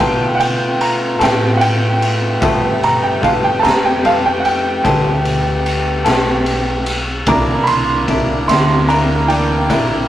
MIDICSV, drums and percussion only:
0, 0, Header, 1, 2, 480
1, 0, Start_track
1, 0, Tempo, 808625
1, 1438, Time_signature, 12, 3, 24, 8
1, 5983, End_track
2, 0, Start_track
2, 0, Title_t, "Drums"
2, 0, Note_on_c, 9, 51, 89
2, 57, Note_off_c, 9, 51, 0
2, 240, Note_on_c, 9, 51, 65
2, 300, Note_off_c, 9, 51, 0
2, 480, Note_on_c, 9, 51, 63
2, 539, Note_off_c, 9, 51, 0
2, 719, Note_on_c, 9, 51, 78
2, 731, Note_on_c, 9, 38, 98
2, 778, Note_off_c, 9, 51, 0
2, 791, Note_off_c, 9, 38, 0
2, 957, Note_on_c, 9, 51, 68
2, 1016, Note_off_c, 9, 51, 0
2, 1201, Note_on_c, 9, 51, 64
2, 1260, Note_off_c, 9, 51, 0
2, 1437, Note_on_c, 9, 36, 122
2, 1438, Note_on_c, 9, 51, 84
2, 1496, Note_off_c, 9, 36, 0
2, 1498, Note_off_c, 9, 51, 0
2, 1682, Note_on_c, 9, 51, 59
2, 1741, Note_off_c, 9, 51, 0
2, 1918, Note_on_c, 9, 36, 74
2, 1925, Note_on_c, 9, 51, 62
2, 1977, Note_off_c, 9, 36, 0
2, 1984, Note_off_c, 9, 51, 0
2, 2164, Note_on_c, 9, 51, 77
2, 2176, Note_on_c, 9, 38, 98
2, 2223, Note_off_c, 9, 51, 0
2, 2236, Note_off_c, 9, 38, 0
2, 2402, Note_on_c, 9, 51, 56
2, 2462, Note_off_c, 9, 51, 0
2, 2641, Note_on_c, 9, 51, 54
2, 2700, Note_off_c, 9, 51, 0
2, 2878, Note_on_c, 9, 36, 84
2, 2880, Note_on_c, 9, 51, 73
2, 2937, Note_off_c, 9, 36, 0
2, 2940, Note_off_c, 9, 51, 0
2, 3118, Note_on_c, 9, 51, 58
2, 3177, Note_off_c, 9, 51, 0
2, 3360, Note_on_c, 9, 51, 58
2, 3419, Note_off_c, 9, 51, 0
2, 3595, Note_on_c, 9, 51, 75
2, 3607, Note_on_c, 9, 38, 101
2, 3654, Note_off_c, 9, 51, 0
2, 3667, Note_off_c, 9, 38, 0
2, 3836, Note_on_c, 9, 51, 65
2, 3895, Note_off_c, 9, 51, 0
2, 4073, Note_on_c, 9, 51, 70
2, 4133, Note_off_c, 9, 51, 0
2, 4312, Note_on_c, 9, 51, 92
2, 4315, Note_on_c, 9, 36, 114
2, 4372, Note_off_c, 9, 51, 0
2, 4374, Note_off_c, 9, 36, 0
2, 4553, Note_on_c, 9, 51, 69
2, 4612, Note_off_c, 9, 51, 0
2, 4797, Note_on_c, 9, 36, 72
2, 4797, Note_on_c, 9, 51, 62
2, 4856, Note_off_c, 9, 36, 0
2, 4857, Note_off_c, 9, 51, 0
2, 5040, Note_on_c, 9, 51, 82
2, 5053, Note_on_c, 9, 38, 107
2, 5100, Note_off_c, 9, 51, 0
2, 5112, Note_off_c, 9, 38, 0
2, 5283, Note_on_c, 9, 51, 62
2, 5342, Note_off_c, 9, 51, 0
2, 5519, Note_on_c, 9, 51, 54
2, 5578, Note_off_c, 9, 51, 0
2, 5757, Note_on_c, 9, 36, 83
2, 5759, Note_on_c, 9, 51, 82
2, 5817, Note_off_c, 9, 36, 0
2, 5819, Note_off_c, 9, 51, 0
2, 5983, End_track
0, 0, End_of_file